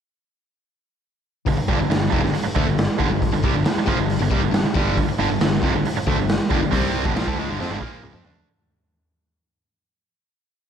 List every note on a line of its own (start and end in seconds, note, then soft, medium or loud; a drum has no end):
1.46 1.57 G1 medium
1.46 1.56 G2 medium
1.46 1.57 D3 medium
1.46 kick medium
1.46 open hi-hat medium
1.57 muted distorted electric guitar stroke medium
1.57 muted picked electric bass stroke soft
1.68 1.79 G1 medium
1.68 1.78 G2 medium
1.68 1.79 D3 medium
1.68 kick loud
1.79 1.90 G1 medium
1.79 1.89 G2 medium
1.79 1.89 D3 medium
1.90 2.11 G1 medium
1.90 2.08 G2 medium
1.90 2.08 D3 medium
1.90 snare loud
1.90 open hi-hat medium
2.12 2.23 F1 loud
2.12 2.22 F2 medium
2.12 2.23 C3 medium
2.12 kick medium
2.23 2.33 G1 medium
2.23 2.33 G2 medium
2.23 2.34 D3 medium
2.23 snare soft
2.34 muted distorted electric guitar stroke medium
2.34 muted picked electric bass stroke soft
2.34 open hi-hat medium
2.46 muted picked electric bass stroke soft
2.46 muted distorted electric guitar stroke medium
2.56 2.66 D2 medium
2.56 2.66 D3 loud
2.56 2.67 A3 loud
2.56 kick loud
2.67 2.87 G1 medium
2.67 2.84 G2 medium
2.67 2.85 D3 medium
2.78 snare loud
2.78 open hi-hat medium
2.99 3.10 G1 medium
2.99 3.09 G2 medium
2.99 3.10 D3 medium
2.99 kick loud
3.10 3.31 G1 medium
3.10 3.28 G2 medium
3.10 3.28 D3 medium
3.22 kick loud
3.22 open hi-hat medium
3.32 3.43 G1 medium
3.32 3.43 G2 medium
3.32 3.43 D3 medium
3.43 3.54 C2 medium
3.43 3.54 C3 medium
3.43 3.54 G3 loud
3.43 kick loud
3.54 3.65 G1 medium
3.54 3.63 G2 medium
3.54 3.65 D3 medium
3.64 muted distorted electric guitar stroke medium
3.64 snare loud
3.64 open hi-hat medium
3.76 muted distorted electric guitar stroke medium
3.76 muted picked electric bass stroke soft
3.86 3.98 A#1 medium
3.86 3.97 A#2 medium
3.86 3.97 F3 loud
3.86 kick loud
3.97 4.19 G1 medium
3.97 4.15 G2 medium
3.97 4.15 D3 medium
4.10 open hi-hat medium
4.19 4.31 G1 medium
4.19 4.31 G2 medium
4.19 4.30 D3 medium
4.30 4.42 C2 medium
4.30 4.40 C3 loud
4.30 4.41 G3 loud
4.30 kick loud
4.41 4.52 G1 medium
4.41 4.50 G2 medium
4.41 4.51 D3 medium
4.51 4.63 G1 medium
4.51 4.62 G2 medium
4.51 4.64 D3 medium
4.51 snare loud
4.51 open hi-hat medium
4.63 muted distorted electric guitar stroke medium
4.63 muted picked electric bass stroke soft
4.74 4.96 G1 medium
4.74 4.96 G2 medium
4.74 4.96 D3 medium
4.74 4.96 G3 medium
4.74 kick loud
4.97 5.07 G1 medium
4.97 5.06 G2 medium
4.97 5.08 D3 medium
4.97 kick medium
4.97 open hi-hat medium
5.07 muted picked electric bass stroke soft
5.07 muted distorted electric guitar stroke medium
5.19 5.29 G1 loud
5.19 5.29 G2 medium
5.19 5.29 D3 loud
5.30 5.40 G1 medium
5.30 5.40 G2 medium
5.30 5.41 D3 medium
5.41 5.61 G1 medium
5.41 5.59 G2 medium
5.41 5.59 D3 medium
5.41 snare loud
5.41 open hi-hat medium
5.62 5.73 F1 loud
5.62 5.73 F2 medium
5.62 5.73 C3 loud
5.62 kick medium
5.74 5.84 G1 medium
5.74 5.83 G2 medium
5.74 5.85 D3 medium
5.85 muted distorted electric guitar stroke medium
5.85 muted picked electric bass stroke soft
5.85 open hi-hat medium
5.95 muted distorted electric guitar stroke medium
5.95 muted picked electric bass stroke soft
6.07 6.17 D2 medium
6.07 6.17 D3 loud
6.07 6.17 A3 loud
6.07 kick loud
6.18 6.38 G1 medium
6.18 6.35 G2 medium
6.18 6.35 D3 medium
6.29 snare loud
6.29 open hi-hat medium
6.50 6.61 G1 medium
6.50 6.60 G2 medium
6.50 6.61 D3 medium
6.50 kick loud
6.62 6.72 G1 medium
6.62 6.73 G2 medium
6.62 6.72 D3 medium
6.72 7.03 C2 medium
6.72 7.04 C3 medium
6.72 7.05 G3 medium
6.72 7.05 C4 loud
6.72 kick loud
6.72 open hi-hat medium
7.05 7.15 G1 loud
7.05 7.16 G2 medium
7.05 7.15 D3 medium
7.05 kick loud
7.15 7.26 A#1 medium
7.15 7.26 A#2 medium
7.15 7.26 F3 loud
7.15 snare loud
7.15 open hi-hat medium
7.26 7.37 D2 medium
7.26 7.37 D3 medium
7.26 7.38 A3 medium
7.26 kick medium
7.38 7.48 C#2 medium
7.38 7.48 C#3 medium
7.38 7.49 G#3 loud
7.49 7.59 G1 medium
7.49 7.59 G2 medium
7.49 7.60 D3 loud
7.60 7.70 F2 medium
7.60 7.70 F3 medium
7.60 7.70 C4 loud
7.60 snare medium
7.70 7.81 G1 medium
7.70 7.81 G2 medium
7.70 7.81 D3 loud
7.81 8.02 A#1 medium
7.81 8.02 A#2 medium
7.81 8.03 F3 loud
7.81 8.03 A#3 medium
7.81 kick medium
8.03 8.13 C#2 medium
8.03 8.13 C#3 medium
8.03 8.14 G#3 medium
8.03 mid tom medium
8.14 8.24 F2 medium
8.14 8.24 F3 medium
8.14 8.25 C4 medium
8.14 mid tom medium
8.24 8.45 D2 medium
8.24 8.46 D3 medium
8.24 8.46 A3 medium
8.24 8.47 D4 medium
8.24 floor tom medium
8.35 floor tom medium